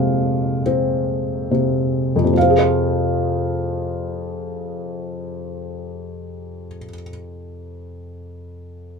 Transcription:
felt piano
Already playing: F2 C3 G#3 C4 F5 G5
0.66 C4
1.51 C3
2.16 F2
2.24 C3
2.33 F3
2.37 F5
2.42 C4
2.50 G#4
2.58 C5

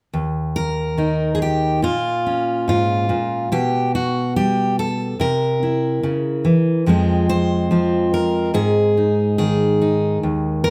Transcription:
steel-string acoustic guitar
0.13 D#2
0.56 A#4
0.98 D#3 D#4
1.35 G#4
1.42 G4
1.82 A#2 F4
2.26 C#4
2.68 G#2 F4
3.09 A#2
3.52 B2 G4
3.95 F#4
4.36 G3 G4
4.79 A4
5.20 C3 A#4
5.63 E4
6.03 C#3
6.45 E3
6.86 F2 F3 G#3 C4 G#4
7.29 C5
7.71 F3 C4
8.14 A#4
8.54 G#2 G#4
8.97 D#4
9.38 D#3 G#4
9.81 D#4
10.23 D#2
10.64 A#4

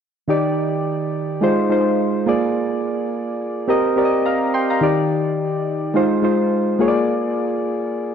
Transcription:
synth keys
0.28 D#3 D#4 G4 D5
1.41 G#3 D#4 F4 C5
1.69 G#3 D#4 F4 C5
2.26 A#3 F4 G#4 D5
3.67 C4 G4 A#4 D#5
3.96 C4 G4 A#4 D5
4.05 D#5
4.25 F5 A#5
4.54 G5 C6
4.70 F5 A#5
4.81 D#3 D#4 G4 D5
5.94 G#3 D#4 F4 C5
6.22 G#3 D#4 F4 C5
6.79 A#3 F4 G#4 C#5
6.88 D5

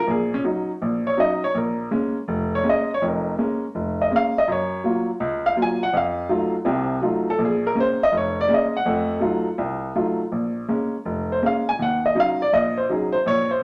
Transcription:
upright piano
0.07 A#1 G#4
0.34 C#4
0.44 F#3 C#4 D#4
0.82 A#1
1.07 C#5
1.17 F#3 C#4 D#4 D#5
1.44 C#5
1.55 A#1 A#4
1.91 G#3 A#3 C#4
2.28 F1
2.55 C#5
2.64 G#3 A#3 C#4
2.69 D#5
2.94 C#5
3.02 F1 F2
3.08 A#4
3.38 G#3 A#3 C#4
3.75 F1
4.02 D#5
4.11 G#3 A#3 C#4
4.16 F5
4.38 D#5
4.48 F#2
4.52 C#5
4.84 F#3 A#3 F4
5.20 C#2
5.46 F5
5.56 F#3 A#3 F4
5.62 G#5
5.83 F#5
5.93 F2 F5
6.29 F#3 A3 D#4 F4
6.65 C2 C3
7.02 F#3 A3 D#4 F4
7.30 A4
7.38 A#1
7.45 G#4
7.67 A#4
7.75 G#3 A#3 C#4
7.80 C5
8.03 D#5
8.12 F1
8.17 C#5
8.41 D5
8.48 G#3 A#3 C#4
8.54 D#5
8.77 F#5
8.85 F2 A3
9.20 F#3 A3 D#4 F4
9.58 C2
9.95 F#3 A3 D#4 F4
10.32 A#1
10.68 G#3 A#3 C#4
11.05 F1
11.32 C5
11.42 G#3 A#3 C#4
11.46 F5
11.69 G#5
11.79 D#2 F#5
12.06 D#5
12.15 F#3 C#4 D#4
12.20 F5
12.42 D5
12.53 A#1 D#5
12.78 C5
12.90 F#3 C#4 D#4 G#4
13.12 C5
13.26 A#1 C#5
13.51 C5

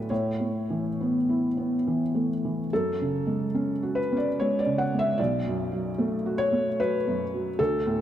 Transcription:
felt piano
Already playing: A2 F#3 A3 D4 F#4 B4 D5
0.10 A2 C#5
0.40 A3
0.70 E3
1.01 B3
1.29 E4
1.57 B3
1.87 E3
2.15 A3
2.45 E3
2.73 F#2 A4
3.01 C#3
3.27 G#3
3.55 C#4
3.83 F#4
3.95 B4
4.12 C#4
4.17 D5
4.40 G#3 C#5
4.59 D5
4.66 C#3
4.78 F#5
4.94 G#3
4.99 E5
5.18 B1 D5
5.47 F#2
5.72 F#3
5.98 A3
6.26 F#4
6.38 C#5
6.52 A3
6.80 F#3 B4
7.07 F#2
7.34 F#3
7.59 D2 A4
7.86 A2

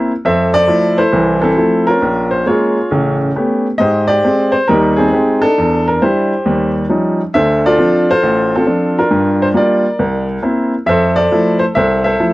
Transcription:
grand piano
Already playing: A#3 C4 E4
0.25 F2 A4 C5 E5
0.54 A4 D5
0.67 F3 A3 E4
0.98 E4 A4 C5
1.13 C2 E3
1.42 C4 E4 A4
1.57 F3 A3 E4
1.87 C#4 F4 A#4
2.02 A#1
2.31 C5
2.46 G#3 A#3 C#4 F4 G#4 C#5
2.91 A1 C#3
3.36 A3 B3 C#4 G4
3.78 G#2 G4 C5 D#5
4.08 G4 D5
4.24 G#3 C4 G4
4.52 C5
4.68 D#2 G3 D#4 G4 A#4
4.96 C4 D#4 G#4
5.13 G#3 C4 G4
5.42 D4 A4
5.58 E2
5.88 A#4
6.02 G3 D4 E4 G4 C5
6.46 D#2 G3
6.89 F3 G3 C#4 D#4
7.34 D2 D3 A4 C5 E5
7.66 F4 A4 D5
7.78 F3 C4 D4
8.11 F4 A4 C5
8.23 A1
8.56 C4 F4 A4
8.66 F3 C4 D4
8.99 D4 F4 A#4
9.11 G2
9.42 C5
9.54 G3 A#3 F4 A#4 D5
9.99 C2
10.43 A#3 C4 E4
10.86 F2 A4 C5 E5
11.16 A4 D5
11.31 F3 A3 E4
11.59 C5
11.75 C2 A4 C5 E5
12.04 A4 C5 E5
12.20 F3 A3 E4

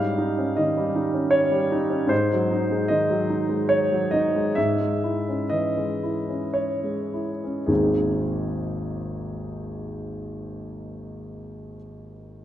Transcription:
grand piano
Already playing: G#2 G3 F5
0.18 D#4
0.38 C#4
0.57 D#3 D#5
0.77 G3
0.96 D#4
1.14 C#4
1.31 C#5
1.51 G3
1.72 D#4
1.90 C#4
2.07 G#2 C5
2.33 F#3
2.51 D#4
2.71 G#3
2.88 D#3 D#5
3.10 F#3
3.30 D#4
3.49 G#3
3.69 C#5
3.92 F#3
4.11 D#4 D#5
4.36 G#3
4.55 G#2 E5
4.81 G#3
5.04 E4
5.29 C#4
5.50 E3 D#5
5.77 G#3
6.03 E4
6.29 C#4
6.54 C#5
6.84 G#3
7.14 E4
7.44 C#4
7.66 G#1 D#2 G#3 C4 D#4 G#4

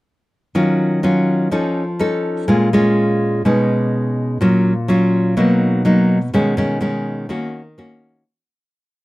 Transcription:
nylon-string guitar
0.55 D#3 F#3 C#4 F4
1.03 F#3 C#4 F4
1.51 F3 C#4 D#4 A4
1.99 C#4 D#4 A4
2.48 A#2 G#3 C#4 F4
2.73 G#3 C#4 F4
3.45 B2 G#3 C#4 D#4
4.41 A#2 F#3 C#4 F4
4.88 F#3 C#4 F4
5.37 B2 F#3 A#3 D#4
5.85 F#3 A#3 D#4
6.34 B2 D#3 G#3 C#4
6.57 D#3 G#3 C#4
6.81 D#3 G#3 C#4
7.29 D#3 A#3 C#4 F#4
7.78 A#3 C#4 F#4

